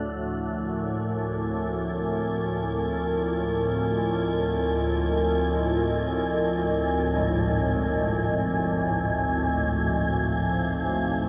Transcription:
Already playing: synth drone D2 A2
0.05 analog synth pad F3, synth texture G#5
0.51 analog synth pad A#4
1.30 analog synth pad C4
2.55 analog synth pad F4
3.72 analog synth pad D#5
7.16 church bells G#2
9.95 analog synth pad F5
10.32 analog synth pad C5
10.49 analog synth pad D#4

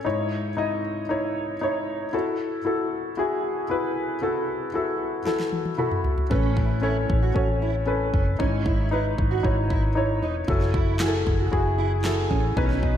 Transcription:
0.05 grand piano G#2 D#4 E4 C#5
0.57 grand piano D#4 E4 D#5
1.09 grand piano D#4 E4 C#5
1.61 grand piano D#4 E4 C#5
2.13 grand piano E4 F#4 A4
2.65 grand piano E4 F#4 A4
3.17 grand piano E4 F#4 G#4
3.70 grand piano E4 F#4 B4
4.22 grand piano E4 F#4 A4
4.74 grand piano E4 F#4 A4
5.25 grand piano E4 F#4 A4, snare
5.40 snare
5.53 high tom
5.65 high tom
5.78 grand piano E4 F#4 A4 B5, mid tom
5.91 mid tom
6.04 floor tom
6.18 floor tom
6.30 fingered electric bass A1, grand piano A2 C#4 A4 B4, steel-string acoustic guitar C#4, kick
6.57 steel-string acoustic guitar E4, kick
6.82 grand piano C#4 A4 C#5, steel-string acoustic guitar E4
7.10 fingered electric bass A1, kick
7.23 steel-string acoustic guitar F#4
7.34 fingered electric bass A1, grand piano C#4 A4 C#5, kick
7.62 steel-string acoustic guitar E4
7.86 grand piano C#4 A4 B4
8.14 fingered electric bass F#1, steel-string acoustic guitar C#4, kick
8.39 fingered electric bass G#1, grand piano G#2 D#4 E4 C#5, steel-string acoustic guitar C#4, kick
8.66 steel-string acoustic guitar E4, kick
8.91 grand piano D#4 E4 B4, steel-string acoustic guitar E4
9.18 fingered electric bass G#1, kick
9.31 steel-string acoustic guitar F#4
9.43 fingered electric bass G#1, grand piano D#4 E4 C#5, kick
9.70 steel-string acoustic guitar E4, kick
9.95 grand piano D#4 E4 C#5
10.22 fingered electric bass E1, steel-string acoustic guitar D#4
10.48 fingered electric bass F#1, steel-string acoustic guitar C#4, grand piano E4 F#4 A4, kick
10.61 snare
10.74 steel-string acoustic guitar E4, kick
10.99 grand piano E4 F#4 G#4, steel-string acoustic guitar E4, snare, clap
11.08 grand piano A4
11.27 fingered electric bass F#1, kick
11.39 steel-string acoustic guitar F#4
11.51 fingered electric bass F#1, grand piano E4 F#4 G#4, kick
11.78 steel-string acoustic guitar E4
12.04 grand piano E4 F#4 A4, snare, clap
12.30 fingered electric bass A1, steel-string acoustic guitar C#4, kick
12.56 fingered electric bass B1, grand piano B2 C#4 D#4 B4, steel-string acoustic guitar C#4, kick
12.70 snare
12.83 steel-string acoustic guitar D#4, kick

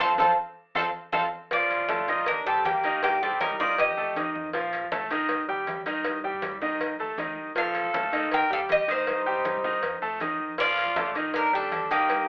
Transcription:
0.00 upright bass F2, grand piano C4 F4 A4, cuban tres C5 F5 A5
0.18 upright bass F2, grand piano C4 F4 A4, trumpet A4, cuban tres C5 F5 A5, low bongo, high conga
0.75 upright bass F2, grand piano C4 F4 A4, trumpet A4, cuban tres C5 F5 A5, low bongo, high conga
1.12 upright bass F2, grand piano C4 F4 A4, trumpet A4, cuban tres C5 F5 A5, low bongo, high conga
1.51 upright bass A#1, grand piano F3 F4 F5, trumpet F4, cuban tres D5, cowbell, high conga
1.70 cowbell, high conga
1.79 upright bass F2
1.89 grand piano A3 A4 A5, cowbell, high conga
1.99 upright bass A#1
2.08 grand piano D#3 D#4 D#5, cowbell, high conga
2.26 upright bass D#2, trumpet D4, cuban tres A#4, cowbell, high conga
2.46 upright bass D#2, grand piano G3 G4 G5, trumpet C4, cuban tres A4, high conga
2.65 trumpet A#3, cuban tres G4, cowbell, high conga
2.84 upright bass D2, grand piano D#3 D#4 D#5, cowbell, high conga
3.03 upright bass C2, trumpet A#3, cuban tres G4, cowbell, high conga
3.22 grand piano G3 G4 G5, trumpet C4, cuban tres A4, high conga
3.31 upright bass G2
3.41 trumpet D#4, cuban tres A#4, cowbell, high conga
3.50 upright bass C2
3.59 grand piano D#3 D#4 D#5, trumpet F4, cuban tres D5, low conga
3.78 upright bass F2, trumpet G4, cuban tres D#5, cowbell, high conga
3.97 upright bass F2, grand piano A3 A4 A5, high conga
4.16 grand piano D#3 D#4 D#5, cowbell, high conga
4.35 upright bass F2, high conga
4.53 upright bass A#1, grand piano F3 F4 F5, cowbell, high conga
4.73 cowbell, high conga
4.82 upright bass F2
4.92 grand piano A3 A4 A5, cowbell, high conga
5.01 upright bass A#1
5.11 grand piano D#3 D#4 D#5, cowbell, high conga
5.29 upright bass D#2, cowbell, high conga
5.48 upright bass D#2, grand piano G3 G4 G5, high conga
5.67 cowbell, high conga
5.86 upright bass G2, grand piano D#3 D#4 D#5, cowbell, high conga
6.05 upright bass C2, cowbell, high conga
6.24 grand piano G3 G4 G5, high conga
6.33 upright bass G2
6.42 cowbell, high conga
6.51 upright bass C2
6.61 grand piano D#3 D#4 D#5, low conga
6.79 upright bass F2, cowbell, high conga
6.99 upright bass D#2, grand piano A3 A4 A5, high conga
7.17 upright bass D2, grand piano D#3 D#4 D#5, cowbell, high conga
7.36 upright bass C2
7.55 upright bass A#1, grand piano F3 F4 F5, trumpet A4, cuban tres F5, cowbell, high conga
7.75 cowbell, high conga
7.84 upright bass F2
7.94 grand piano A3 A4 A5, cowbell, high conga
8.03 upright bass D2
8.13 grand piano D#3 D#4 D#5, cowbell, high conga
8.31 upright bass D#2, trumpet A#4, cuban tres G5, cowbell, high conga
8.50 upright bass D#2, grand piano G3 G4 G5, trumpet A4, cuban tres F5, high conga
8.69 trumpet G4, cuban tres D#5, cowbell, high conga
8.88 upright bass D2, grand piano D#3 D#4 D#5, trumpet D#4, cuban tres C5, cowbell, high conga
9.07 upright bass C2, cowbell, high conga
9.26 grand piano G3 G4 G5, high conga
9.35 upright bass G2
9.45 cowbell, high conga
9.54 upright bass C2
9.64 grand piano D#3 D#4 D#5, low conga
9.83 upright bass F2, cowbell, high conga
10.02 upright bass F2, grand piano A3 A4 A5, high conga
10.20 grand piano D#3 D#4 D#5, cowbell, high conga
10.39 upright bass F2
10.58 upright bass A#1, grand piano F3 F4 F5, trumpet F4, cuban tres D5, cowbell, high conga
10.78 cowbell, high conga
10.86 upright bass F2
10.96 grand piano A3 A4 A5, cowbell, high conga
11.05 upright bass A#1
11.15 grand piano D#3 D#4 D#5, cowbell
11.33 upright bass D#2, trumpet D4, cuban tres A#4, cowbell, high conga
11.52 upright bass D#2, grand piano G3 G4 G5, trumpet D4, cuban tres A4, high conga
11.72 cowbell, high conga
11.90 upright bass G2, grand piano D#3 D#4 D#5, trumpet A#3, cuban tres G4, cowbell, high conga
12.09 upright bass C2, cowbell, high conga

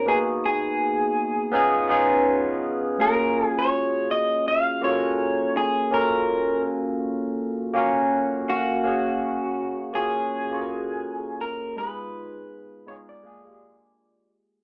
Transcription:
0.06 tine electric piano A#3 B3 D#4 F#4 G#4, clean electric guitar G#4
0.46 clean electric guitar G#4
1.52 tine electric piano B3 C#4 D#4 F4 G#4
1.88 tine electric piano B3 C#4 D#4 F4 G#4
2.98 tine electric piano A3 C#4 F4 F#4 G#4, clean electric guitar A#4
3.04 tine electric piano A#3
3.46 clean electric guitar G#4
3.59 clean electric guitar C#5
4.11 clean electric guitar D#5
4.48 clean electric guitar F5
4.81 tine electric piano A#3 C#4 F4 F#4 A4, clean electric guitar C#5
4.91 tine electric piano A#4
5.57 clean electric guitar G#4
5.91 tine electric piano A#3 C#4 F4 F#4, clean electric guitar A#4
5.95 tine electric piano A4
6.01 tine electric piano A#4
7.73 tine electric piano A#3 C#4 F#4 F5 G#5
7.78 tine electric piano A#4
8.12 tine electric piano F#5
8.49 clean electric guitar F#4, tine electric piano F5
8.83 tine electric piano A#3 C#4 F#4 G#4 F5
9.93 tine electric piano A#3 C#4 F4 F#4, clean electric guitar G#4
9.97 tine electric piano G#4
10.51 tine electric piano A#3 C#4 F4 F#4 A4
10.61 tine electric piano A#4
11.41 clean electric guitar A#4
11.76 tine electric piano G#3 B3 D#4 F4 G4, clean electric guitar B4
11.87 tine electric piano G#4
12.86 tine electric piano G#3 B3 D#4 F4 G#4, clean electric guitar C#5
13.09 clean electric guitar D5
13.23 tine electric piano G#3 A#3 D4 F4 G#4
13.44 tine electric piano G#3 A#3 D4 F4 G4
13.54 tine electric piano G#4

